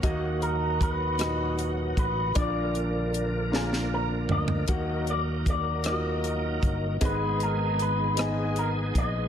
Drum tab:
HH |x-x-x-x-x-x-|x-x-x-------|x-x-x-x-x-x-|x-x-x-x-x-x-|
SD |------r-----|------oo----|------r-----|------r-----|
FT |------------|----------oo|------------|------------|
BD |o---o-----o-|o-----------|o---o-----o-|o---------o-|